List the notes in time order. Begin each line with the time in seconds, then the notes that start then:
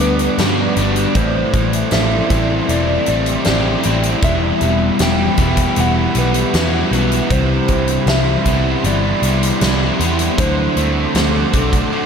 Already playing: G2 D3 G3 B3 D4 B4 D5 F#5 D6
0.00 D2 B3 D4 B4
0.19 closed hi-hat
0.37 G2 D3 G3 B3 D4 F#4, snare, closed hi-hat
0.76 G1 G2 D3 G3 B3 D4, closed hi-hat
0.96 closed hi-hat
1.15 A1 A2 E3 A3 C4 E4 A4 C5 E5 C6, kick, closed hi-hat
1.54 A1 E3, kick, closed hi-hat
1.73 closed hi-hat
1.91 A1 A2 E3 G3 A3 C4 E4 E5, snare, closed hi-hat
2.29 A1 A2 E3 G3 A3 C4 E4, kick, closed hi-hat
2.68 E1 A2 E3 A3 C4 E4 D5, closed hi-hat
3.06 A1 G3 C4 D5, closed hi-hat
3.26 closed hi-hat
3.44 A1 A2 E3 A3 C4 E4 G4, snare, closed hi-hat
3.83 A1 A2 E3 A3 C4 E4, closed hi-hat
4.03 closed hi-hat
4.21 E1 E2 E3 G3 B3 E5 B5, kick, closed hi-hat
4.25 E4
4.61 E1 B2 G3, closed hi-hat
4.99 E1 E3 G3 B3 E4 G5, snare, closed hi-hat
5.37 E1 E3 G3 B3 E4, kick, closed hi-hat
5.57 kick, closed hi-hat
5.76 E1 E3 G3 B3 E4, closed hi-hat
5.80 F#5
6.15 B1 G3 B3 B4, closed hi-hat
6.34 closed hi-hat
6.53 E2 E3 G3 B3 E4 F#4, snare, closed hi-hat
6.91 B1 E3 G3 B3 E4, closed hi-hat
7.12 closed hi-hat
7.29 C2 C3 E3 G3 C4 E4 C5 B5 C6, kick, closed hi-hat
7.68 C2 E3 G3, kick, closed hi-hat
7.88 closed hi-hat
8.06 C2 C3 E3 G3 C4 E4 E5, snare, closed hi-hat
8.45 C2 C3 E3 G3 B3 C4 E4, kick, closed hi-hat
8.82 G1 C3 E3 G3 E4 D5, closed hi-hat
9.22 C2 G3 B3, closed hi-hat
9.43 closed hi-hat
9.60 C2 C3 E3 G3 C4 E4 G4, snare, closed hi-hat
9.98 E2 C3 E3 G3 B3 C4 E4, closed hi-hat
10.19 closed hi-hat
10.37 D2 D3 F#3 A3 C4 F#4 A4 C5 F#5 D6, kick, closed hi-hat
10.77 D2 F#3 A3, closed hi-hat
11.15 D2 D3 A3 C4 F#4, snare, closed hi-hat
11.53 B1 D3 A3 C4 D4 F#4, kick, closed hi-hat
11.73 kick, closed hi-hat
11.91 D3 F#3 A3 C4 F#4